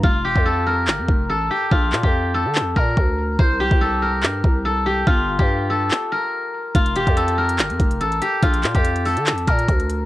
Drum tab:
HH |----------------|----------------|----------------|----------------|
CP |--------x-------|--x-----x-------|--------x-------|--------x-------|
BD |o--o------o-----|o--o------o-o---|o--o------o-----|o--o------------|

HH |xxxxxx-xxxxxxxx-|xxxxxxoxxxxxxxx-|
CP |--------x-------|--x-----x-------|
BD |o--o------o-----|o--o------o-o---|